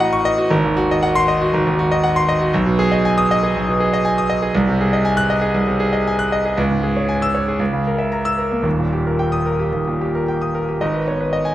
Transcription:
0.00 0.54 A1 loud
0.00 0.54 A2 medium
0.00 0.38 F#4 medium
0.00 0.25 D#5 medium
0.00 0.53 F#5 loud
0.00 0.13 C#6 loud
0.13 0.33 C#6 loud
0.25 0.45 D#5 loud
0.38 0.51 F#4 medium
0.50 1.49 G#1 loud
0.64 0.84 D#2 medium
0.77 0.97 F#4 loud
0.91 1.11 D#5 medium
1.03 1.23 F#5 loud
1.15 1.35 C6 loud
1.28 1.48 D#5 medium
1.42 1.61 F#4 medium
1.54 2.51 G#1 loud
1.67 1.86 D#2 medium
1.79 1.98 F#4 loud
1.92 2.11 D#5 medium
2.04 2.23 F#5 loud
2.16 2.36 C6 loud
2.29 2.48 D#5 loud
2.41 2.53 F#4 medium
2.54 3.51 B1 loud
2.66 2.86 B2 medium
2.79 2.99 G#4 loud
2.92 3.11 D#5 medium
3.05 3.24 G#5 loud
3.18 3.37 D#6 loud
3.31 3.50 D#5 loud
3.43 3.63 G#4 medium
3.56 4.52 B1 medium
3.69 3.88 B2 medium
3.80 4.00 G#4 medium
3.94 4.12 D#5 loud
4.05 4.24 G#5 loud
4.18 4.37 D#6 loud
4.30 4.49 D#5 medium
4.42 4.54 G#4 medium
4.55 5.52 C2 loud
4.68 4.87 C3 medium
4.81 5.00 G#4 medium
4.93 5.12 D#5 medium
5.05 5.25 G#5 loud
5.17 5.37 F#6 loud
5.30 5.50 D#5 medium
5.41 5.62 G#4 medium
5.54 6.54 C2 medium
5.67 5.88 C3 medium
5.80 6.01 G#4 medium
5.93 6.14 D#5 medium
6.07 6.27 G#5 medium
6.19 6.40 F#6 medium
6.32 6.53 D#5 medium
6.45 6.58 G#4 medium
6.58 7.56 C#2 loud
6.71 6.91 G#2 medium
6.83 7.04 G#4 medium
6.97 7.16 C#5 medium
7.09 7.29 G#5 medium
7.22 7.42 E6 loud
7.35 7.55 C#5 medium
7.48 7.60 G#4 medium
7.59 8.62 C#2 medium
7.73 7.94 C#3 medium
7.87 8.07 A#4 medium
7.99 8.20 E5 medium
8.12 8.33 A#5 medium
8.25 8.46 E6 loud
8.38 8.60 A#4 medium
8.51 8.65 A#3 medium
8.63 9.69 D#1 medium
8.63 9.69 D#2 medium
8.78 9.00 A#2 medium
8.93 9.14 G4 medium
9.07 9.28 A#4 medium
9.19 9.41 G5 medium
9.32 9.54 D#6 medium
9.46 9.68 A#4 medium
9.59 9.81 G4 medium
9.73 10.77 D#2 medium
9.87 10.09 A#2 medium
10.01 10.23 G4 medium
10.15 10.36 A#4 medium
10.28 10.49 G5 medium
10.42 10.63 D#6 medium
10.55 10.76 A#4 medium
10.69 10.81 G4 medium
10.81 11.55 G#1 medium
10.81 11.02 D#5 medium
10.94 11.15 B4 medium
11.08 11.28 B3 medium
11.08 11.20 C#5 medium
11.20 11.40 B4 medium
11.33 11.53 D#5 medium
11.45 11.55 G#5 medium

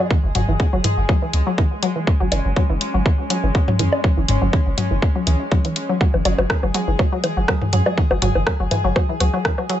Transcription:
0.00 9.80 G#3 medium
0.00 2.10 G#4 medium
0.11 0.14 E3 medium
0.11 kick loud
0.24 0.31 F#1 medium
0.35 0.44 F#1 medium
0.35 0.41 F#3 loud
0.35 closed hi-hat medium
0.35 mid tom medium
0.48 0.56 F#1 medium
0.48 0.52 E3 medium
0.60 kick loud
0.73 0.80 F#1 medium
0.73 0.78 F#3 loud
0.84 0.88 E3 medium
0.84 closed hi-hat medium
0.84 mid tom medium
0.97 1.05 F#1 medium
1.09 1.15 F#3 loud
1.09 kick loud
1.22 1.25 E3 medium
1.33 1.42 C#2 medium
1.33 closed hi-hat medium
1.47 1.52 F#3 loud
1.58 1.62 E3 medium
1.58 kick loud
1.83 1.88 F#3 loud
1.83 closed hi-hat medium
1.96 1.99 E3 medium
2.07 6.03 C#4 medium
2.07 kick loud
2.20 2.28 F#1 medium
2.20 2.25 F#3 loud
2.32 2.40 F#1 medium
2.32 2.36 E3 medium
2.32 closed hi-hat medium
2.32 low woodblock medium
2.45 2.52 F#1 medium
2.56 2.62 F#3 loud
2.56 kick loud
2.70 2.77 F#1 medium
2.70 2.73 E3 medium
2.81 closed hi-hat medium
2.94 3.02 F#1 medium
2.94 2.99 F#3 loud
3.06 3.09 E3 medium
3.06 kick loud
3.30 3.36 F#3 loud
3.30 closed hi-hat medium
3.43 3.51 F#1 medium
3.43 3.47 E3 medium
3.55 kick loud
3.68 3.73 F#3 loud
3.68 mid tom medium
3.79 3.88 F#2 medium
3.79 3.83 E3 medium
3.79 closed hi-hat medium
3.93 low woodblock medium
4.04 4.10 F#3 loud
4.04 kick loud
4.17 4.25 F#1 loud
4.17 4.20 E3 medium
4.28 4.37 F#1 medium
4.28 closed hi-hat medium
4.28 mid tom medium
4.42 4.49 F#1 medium
4.42 4.47 F#3 loud
4.53 4.57 E3 medium
4.53 kick loud
4.66 4.74 F#1 medium
4.78 4.83 F#3 loud
4.78 closed hi-hat medium
4.78 mid tom medium
4.91 4.98 F#1 medium
4.91 4.94 E3 medium
5.02 kick loud
5.15 5.20 F#3 loud
5.27 5.36 C#2 medium
5.27 5.31 E3 medium
5.27 closed hi-hat medium
5.52 5.57 F#3 loud
5.52 kick loud
5.65 5.68 E3 medium
5.65 closed hi-hat soft
5.76 closed hi-hat medium
5.89 5.94 F#3 loud
6.01 6.06 F#3 loud
6.01 9.80 G#4 medium
6.01 kick loud
6.14 6.21 F#1 loud
6.14 6.17 E3 medium
6.14 high bongo soft
6.25 6.34 F#1 medium
6.25 6.28 F#3 loud
6.25 closed hi-hat medium
6.25 low woodblock medium
6.38 6.46 F#1 medium
6.38 6.43 F#3 medium
6.38 high bongo medium
6.50 6.54 E3 medium
6.50 kick loud
6.50 cross-stick medium
6.63 6.70 F#1 medium
6.63 6.65 F#3 loud
6.63 high bongo soft
6.74 6.80 F#3 loud
6.74 closed hi-hat medium
6.88 6.95 F#1 medium
6.88 6.91 E3 medium
6.99 7.01 F#3 loud
6.99 kick loud
6.99 high bongo soft
7.12 7.17 F#3 loud
7.24 7.28 E3 medium
7.24 closed hi-hat medium
7.24 high bongo medium
7.37 7.44 F#1 medium
7.37 7.39 F#3 loud
7.48 7.54 F#3 loud
7.48 kick loud
7.48 cross-stick medium
7.48 high bongo soft
7.62 7.65 E3 medium
7.62 mid tom medium
7.73 7.81 F#2 medium
7.73 7.75 F#3 loud
7.73 closed hi-hat medium
7.86 7.91 F#3 loud
7.86 high bongo soft
7.86 low woodblock medium
7.98 8.01 E3 medium
7.98 kick loud
8.11 8.18 F#1 loud
8.11 8.13 F#3 loud
8.11 high bongo medium
8.22 8.31 F#1 medium
8.22 8.28 F#3 loud
8.22 closed hi-hat medium
8.22 mid tom medium
8.35 8.43 F#1 medium
8.35 8.39 E3 medium
8.35 high bongo soft
8.47 8.49 F#3 loud
8.47 kick loud
8.47 cross-stick medium
8.60 8.67 F#1 medium
8.60 8.65 F#3 loud
8.71 8.75 E3 medium
8.71 closed hi-hat medium
8.71 mid tom medium
8.71 high bongo soft
8.84 8.92 F#1 medium
8.84 8.86 F#3 loud
8.96 9.01 F#3 loud
8.96 kick loud
8.96 high bongo medium
9.09 9.12 E3 medium
9.20 9.29 C#2 medium
9.20 9.23 F#3 loud
9.20 closed hi-hat medium
9.20 high bongo soft
9.33 9.38 F#3 loud
9.45 9.49 E3 medium
9.45 kick loud
9.45 cross-stick medium
9.58 9.60 F#3 loud
9.58 high bongo soft
9.70 9.75 F#3 medium
9.70 closed hi-hat medium

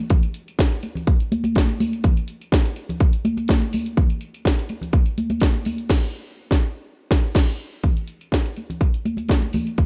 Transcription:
0.10 kick loud
0.10 closed hi-hat loud
0.10 muted conga soft
0.10 low conga medium
0.23 closed hi-hat soft
0.34 closed hi-hat medium
0.48 closed hi-hat medium
0.59 kick loud
0.59 snare loud
0.59 closed hi-hat medium
0.72 closed hi-hat soft
0.83 closed hi-hat medium
0.83 muted conga soft
0.95 closed hi-hat soft
0.95 low conga medium
1.07 kick loud
1.07 closed hi-hat medium
1.07 muted conga soft
1.20 closed hi-hat soft
1.32 closed hi-hat medium
1.32 muted conga soft
1.32 high conga medium
1.44 closed hi-hat soft
1.44 high conga medium
1.55 kick loud
1.55 snare loud
1.55 closed hi-hat medium
1.55 muted conga soft
1.55 high conga medium
1.69 closed hi-hat soft
1.80 open hi-hat medium
1.80 muted conga soft
1.80 high conga medium
1.93 closed hi-hat medium
2.04 kick loud
2.04 closed hi-hat medium
2.04 low conga medium
2.17 closed hi-hat soft
2.28 closed hi-hat medium
2.41 closed hi-hat medium
2.52 kick loud
2.52 snare loud
2.52 closed hi-hat medium
2.52 muted conga soft
2.66 closed hi-hat soft
2.76 closed hi-hat medium
2.89 closed hi-hat soft
2.89 low conga medium
3.00 kick loud
3.00 closed hi-hat medium
3.13 closed hi-hat soft
3.25 closed hi-hat medium
3.25 muted conga soft
3.25 high conga medium
3.37 closed hi-hat soft
3.37 high conga medium
3.48 kick loud
3.48 snare loud
3.48 closed hi-hat medium
3.48 high conga medium
3.62 closed hi-hat soft
3.73 open hi-hat medium
3.73 muted conga soft
3.73 high conga medium
3.86 closed hi-hat medium
3.97 kick loud
3.97 closed hi-hat loud
3.97 low conga medium
4.10 closed hi-hat soft
4.21 closed hi-hat medium
4.34 closed hi-hat medium
4.45 kick loud
4.45 snare loud
4.45 closed hi-hat medium
4.45 muted conga soft
4.59 closed hi-hat soft
4.69 closed hi-hat medium
4.69 muted conga soft
4.81 closed hi-hat soft
4.81 low conga medium
4.93 kick loud
4.93 closed hi-hat medium
4.93 muted conga soft
5.06 closed hi-hat soft
5.18 closed hi-hat medium
5.18 high conga medium
5.30 closed hi-hat medium
5.30 high conga medium
5.40 kick loud
5.40 snare loud
5.40 closed hi-hat medium
5.40 muted conga soft
5.40 high conga medium
5.54 closed hi-hat soft
5.65 open hi-hat medium
5.65 high conga medium
5.78 closed hi-hat soft
5.89 kick loud
5.89 snare loud
5.89 crash medium
6.51 kick loud
6.51 snare loud
7.11 kick loud
7.11 snare loud
7.35 kick loud
7.35 snare loud
7.35 crash medium
7.83 kick loud
7.83 closed hi-hat medium
7.83 muted conga soft
7.83 low conga medium
7.97 closed hi-hat soft
8.07 closed hi-hat medium
8.21 closed hi-hat soft
8.32 kick medium
8.32 snare medium
8.32 closed hi-hat medium
8.46 closed hi-hat soft
8.57 closed hi-hat medium
8.57 muted conga soft
8.70 closed hi-hat soft
8.70 low conga medium
8.81 kick loud
8.81 closed hi-hat medium
8.94 closed hi-hat soft
9.05 closed hi-hat medium
9.05 muted conga soft
9.05 high conga medium
9.17 closed hi-hat soft
9.17 high conga medium
9.28 kick loud
9.28 snare loud
9.28 closed hi-hat medium
9.28 high conga medium
9.42 closed hi-hat soft
9.42 high conga soft
9.53 open hi-hat medium
9.53 muted conga soft
9.53 high conga medium
9.53 low conga medium
9.67 closed hi-hat soft
9.78 kick loud
9.78 closed hi-hat medium
9.78 muted conga soft
9.78 low conga medium

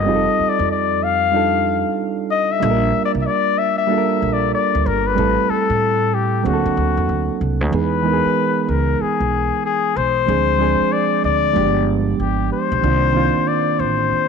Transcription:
0.00 0.51 D#5 medium
0.05 0.25 F1 loud
0.05 1.15 G3 medium
0.05 1.15 C4 medium
0.05 1.15 D#4 medium
0.05 1.16 F4 medium
0.09 0.16 G#4 medium
0.16 1.20 A4 medium
0.39 muted upright bass stroke soft
0.49 0.70 D5 medium
0.59 1.82 F2 medium
0.71 1.05 D5 medium
1.03 1.98 F5 loud
1.32 2.42 G3 medium
1.32 2.42 D4 medium
1.32 2.43 D#4 medium
1.32 2.43 F4 medium
1.36 2.44 A4 medium
2.31 2.53 D#5 loud
2.51 3.05 E5 loud
2.60 2.91 A#1 loud
2.60 3.70 G3 medium
2.60 3.70 A#3 medium
2.60 3.71 D4 medium
2.60 3.71 F4 medium
2.60 2.71 A4 medium
2.70 3.75 A#4 medium
3.05 3.12 D5 loud
3.15 3.25 C2 medium
3.21 3.28 E5 medium
3.26 3.60 D5 loud
3.58 3.77 E5 loud
3.78 4.34 E5 medium
3.87 4.97 G3 medium
3.87 4.98 A#3 medium
3.87 4.98 D4 medium
3.87 4.99 F4 medium
3.91 3.98 A4 medium
3.98 5.03 A#4 medium
4.22 4.51 A#1 medium
4.33 4.53 D5 medium
4.54 4.88 D5 medium
4.75 4.85 D2 medium
4.86 5.14 G1 medium
4.86 5.08 A#4 medium
5.07 5.51 B4 loud
5.15 5.36 A1 loud
5.15 6.25 G3 medium
5.15 6.25 A3 medium
5.15 6.26 C4 medium
5.15 6.27 E4 medium
5.19 6.27 A4 medium
5.50 6.16 A4 loud
5.50 muted upright bass stroke soft
5.70 6.41 A2 medium
6.14 6.48 G4 medium
6.43 6.63 D2 medium
6.43 7.53 F#3 medium
6.43 7.53 A#3 medium
6.43 7.54 C4 medium
6.43 7.54 D4 medium
6.43 7.41 F#4 medium
6.47 6.54 G#4 medium
6.53 7.58 A4 medium
6.66 6.76 D3 medium
6.77 6.95 D2 medium
6.97 7.08 E2 medium
7.09 7.27 D2 medium
7.41 7.61 C2 medium
7.61 7.71 D2 medium
7.70 8.20 E2 loud
7.70 7.99 E3 medium
7.70 8.00 G#3 medium
7.70 8.00 B3 medium
7.70 8.01 D#4 medium
7.75 8.01 G#4 medium
7.75 8.63 B4 loud
8.03 9.12 E3 medium
8.03 9.13 G#3 medium
8.03 9.13 B3 medium
8.03 9.14 D#4 medium
8.07 8.14 A#4 medium
8.13 9.18 G#4 medium
8.25 muted upright bass stroke soft
8.63 8.71 B4 medium
8.69 8.97 C#2 medium
8.69 9.03 A#4 medium
9.01 9.64 G#4 medium
9.01 muted upright bass stroke soft
9.20 9.49 B1 medium
9.65 9.98 G#4 medium
9.96 10.25 B1 medium
9.96 10.94 C5 loud
10.26 10.76 D2 medium
10.26 10.55 F3 medium
10.26 10.55 G#3 medium
10.26 10.56 C4 medium
10.26 10.56 D4 medium
10.26 10.57 G#4 medium
10.58 11.52 F3 medium
10.58 11.53 G#3 medium
10.58 11.55 C4 medium
10.58 11.55 D4 medium
10.58 11.56 G#4 medium
10.81 muted upright bass stroke soft
10.92 11.24 D5 loud
11.24 11.53 D2 medium
11.24 11.90 D5 loud
11.53 12.15 G1 medium
11.53 12.63 F3 medium
11.53 12.64 G#3 medium
11.53 11.63 A#3 medium
11.53 12.65 D4 medium
11.58 12.65 G4 medium
11.62 12.68 B3 medium
12.20 12.48 G#1 medium
12.20 12.49 G4 medium
12.52 13.49 C5 loud
12.72 12.82 B1 medium
12.81 13.31 C2 medium
12.81 13.10 D#3 medium
12.81 13.10 A#3 medium
12.81 13.11 C4 medium
12.81 13.11 D4 medium
12.85 13.12 F4 medium
13.13 14.23 D#3 medium
13.13 14.23 A#3 medium
13.13 14.24 C4 medium
13.13 14.24 D4 medium
13.17 14.25 F4 medium
13.36 muted upright bass stroke soft
13.48 13.81 D5 medium
13.79 14.08 A1 medium
13.79 14.28 C5 loud
14.11 muted upright bass stroke soft

